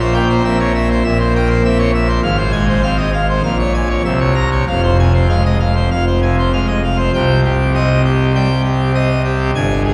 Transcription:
Already playing: A#1 A#2
0.00 C5
0.14 A#3 G5
0.30 C5
0.45 C4 E5
0.60 C#5
0.75 E5
0.91 C5
1.04 A#1 A#2 E5
1.20 C5
1.36 A#3 G5
1.51 C5
1.64 C4 E5
1.79 C#5
1.95 E5
2.08 C5
2.23 G#1 G#2 F5
2.38 C5
2.52 G#3 G#5
2.69 C5
2.83 C4 F5
2.98 D#5
3.13 F5
3.29 C5
3.43 A#1 A#2 F5
3.60 C#5
3.74 G#5
3.90 C#5
4.05 C2 C3 E5
4.20 C#5
4.35 A#5
4.52 C#5
4.68 F1 F2 F5
4.83 C5
5.00 C3 G#5
5.14 C5
5.29 G#3 F5
5.46 D#5
5.60 F5
5.76 C5
5.91 F1 F2 F5
6.07 C5
6.22 C3 G#5
6.39 C5
6.53 G#3 F5
6.68 D#5
6.84 F5
6.98 C5
7.14 C2 C3 G5
7.45 G4
7.75 C4 D#5
8.05 G4
8.35 G3 G5
8.65 G4
8.95 C4 D#5
9.25 G4
9.55 G1 G2 G#5
9.85 G#4

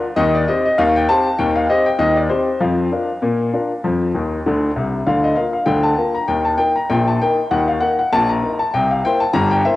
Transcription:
0.16 D#2 D#3 D#5
0.35 D5
0.48 C4 G4 C5 D#5
0.65 D#5
0.78 D#2 D#3 F5
0.96 G5
1.09 C4 G4 C5 A5
1.39 D#2 D#3 G5
1.56 F5
1.70 C4 G4 C5 D#5
1.86 G5
1.99 D#2 D#3 D#5
2.16 D5
2.29 C4 G4 C5
2.60 F2 F3 F5
2.92 D4 F4 A#4
3.22 A#2 A#3
3.53 D4 F4 A#4
3.84 F2 F3
4.14 D#2 D#3
4.46 D2 D3
4.76 C2 C3
5.07 D2 D3 F5
5.24 D#5
5.36 A#3 F4 A#4 F5
5.53 F5
5.66 D2 D3 G5
5.83 A5
5.97 A#3 F4 A#4
6.15 A#5
6.28 D#2 D#3 G5
6.45 A5
6.58 A#3 D#4 A#4 G5
6.76 A#5
6.90 A#1 A#2 G5
7.08 A5
7.22 A#3 D#4 A#4 G5
7.51 D#2 D#3 F#5
7.68 F5
7.81 A#3 D#4 A#4 F#5
7.99 F#5
8.13 A#1 A#2 A5
8.29 A#5
8.43 A#3 D#4 A#4
8.59 A5
8.74 C2 C3 G5
8.91 F5
9.05 A#3 E4 C5 G5
9.20 A5
9.33 G1 G2 A#5
9.51 G5
9.65 A#3 E4 C5 E5

